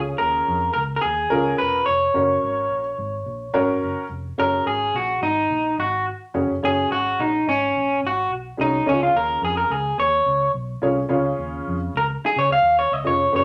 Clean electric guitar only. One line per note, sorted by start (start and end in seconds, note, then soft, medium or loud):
0.18 0.72 A#4 medium
0.74 0.79 A#4 medium
0.96 1.01 A#4 medium
1.02 1.58 G#4 loud
1.58 1.85 B4 medium
1.86 3.78 C#5 loud
4.40 4.67 A#4 loud
4.67 4.96 G#4 medium
4.96 5.21 F#4 medium
5.23 5.75 D#4 medium
5.80 6.05 F#4 medium
6.65 6.90 G#4 loud
6.92 7.20 F#4 loud
7.20 7.48 D#4 medium
7.49 8.00 C#4 medium
8.07 8.31 F#4 medium
8.61 8.86 D#4 medium
8.89 9.02 C#4 medium
9.03 9.15 F4 medium
9.17 9.42 A#4 medium
9.45 9.57 G#4 medium
9.57 9.71 A#4 medium
9.71 9.99 G#4 medium
10.00 10.51 C#5 loud
11.97 12.04 A#4 medium
12.26 12.37 G#4 loud
12.39 12.52 C#5 medium
12.52 12.78 F5 loud
12.79 12.93 C#5 medium
12.93 13.06 D#5 medium
13.07 13.35 C#5 medium
13.36 13.44 C#5 medium